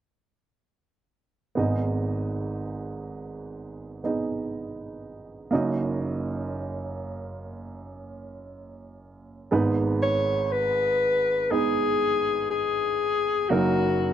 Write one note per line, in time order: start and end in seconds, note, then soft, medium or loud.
1.55 5.48 G#1 soft
1.55 5.48 G#2 soft
1.55 3.99 B3 soft
1.55 4.00 D#4 soft
1.55 4.01 G#4 soft
1.55 4.01 D#5 medium
4.04 5.52 B3 soft
4.04 5.51 D#4 soft
4.04 5.53 G#4 soft
4.04 5.53 D#5 soft
5.51 9.48 F#1 medium
5.51 9.48 F#2 medium
5.51 9.47 A#3 medium
5.51 9.48 D#4 soft
5.51 9.49 F#4 soft
5.51 9.49 D#5 medium
9.51 13.46 G#1 medium
9.51 13.46 G#2 medium
9.51 11.41 G#3 medium
9.51 11.41 B3 medium
9.51 11.41 D#4 medium
9.51 11.41 B4 medium
10.02 10.54 C#5 medium
10.52 11.53 B4 medium
11.51 13.40 G#3 medium
11.51 13.40 B3 medium
11.51 13.40 D#4 medium
11.51 12.50 G#4 medium
11.51 13.41 G#4 medium
12.50 13.51 G#4 medium
13.49 14.13 F#1 soft
13.49 14.13 F#2 soft
13.49 14.13 F#3 medium
13.49 14.13 A#3 medium
13.49 14.13 D#4 medium
13.49 14.13 F#4 medium
13.49 14.13 A#4 medium